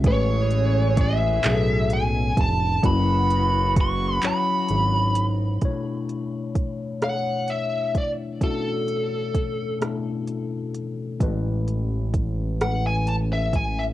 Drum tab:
HH |xxxxxx|xxxxxx|xxxxxx|xxxxxx|
CP |---x--|---x--|------|------|
SD |------|------|---r--|---r--|
BD |o-o--o|o-o---|o-o--o|o-o---|

HH |xxxxxx|
CP |------|
SD |---r--|
BD |o-o--o|